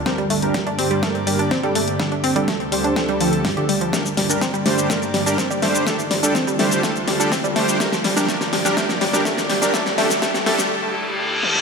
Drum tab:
HH |xxoxxxoxxxoxxxox|xxoxxxoxxxoxoxox|xxoxxxoxxxoxxxox|xxoxxxoxxxoxoxox|
SH |----------------|----------------|xx-xxx-xxx-xxx-x|xx-xxx-xxx-xxx-x|
SD |o---o---o---o---|o---o---o---o---|o-o-o-o-o-o-o-o-|o-o-o-o-o-o-o-o-|
T1 |----------------|----------------|----------------|----------------|
T2 |----------------|----------------|----------------|----------------|
BD |o---o---o---o---|o---o---o---o---|o---o---o---o---|o---o---o---o---|

HH |xxoxxxoxxxoxxxox|xxoxxxox--------|
SH |xx-xxx-xxx-xxx-x|xx-xxx-x--------|
SD |oooooooooooooooo|oooooooo--------|
T1 |----------------|--------------o-|
T2 |----------------|---------------o|
BD |o---o---o---o---|o---o-----------|